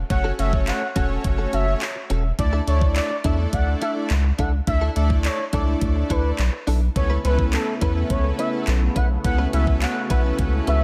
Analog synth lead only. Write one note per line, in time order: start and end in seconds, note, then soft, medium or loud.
0.10 0.30 F#5 loud
0.39 0.59 E5 medium
0.67 0.88 F#5 medium
0.96 1.06 F#5 medium
1.53 1.73 E5 medium
2.39 2.59 D5 loud
2.67 2.88 C#5 medium
2.96 3.16 D5 medium
3.25 3.35 E5 medium
3.53 3.73 F#5 medium
3.82 3.92 E5 medium
4.39 4.49 F#5 medium
4.67 4.87 E5 loud
4.96 5.16 E5 medium
5.25 5.45 C#5 medium
5.53 5.63 D5 medium
6.10 6.30 B4 medium
6.96 7.16 C#5 loud
7.25 7.45 B4 medium
7.53 7.73 A4 loud
7.82 7.92 B4 medium
8.10 8.30 C#5 medium
8.39 8.49 E5 medium
8.96 9.06 F#5 medium
9.24 9.45 F#5 loud
9.53 9.73 E5 medium
9.82 10.02 F#5 medium
10.10 10.20 F#5 medium
10.67 10.84 E5 medium